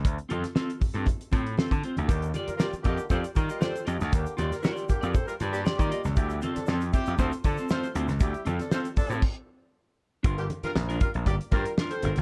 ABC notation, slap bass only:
X:1
M:4/4
L:1/16
Q:1/4=118
K:Gm
V:1 name="Slap bass" clef=bass
D,, z F,, z4 G,, z2 A,,2 z D, z D,, | E,,2 z4 F,, z F,, z E, z3 F,, D,, | E,, z E,, z4 F,, z2 G,,2 z E, z ^C,, | D,,2 z2 F,,2 z F,, D,, z D, z3 D,, ^C,, |
D,, z F,, z4 A,, z8 | G,,,2 z2 B,,,2 z B,,, G,,, z G,, z3 G,,, ^F,,, |]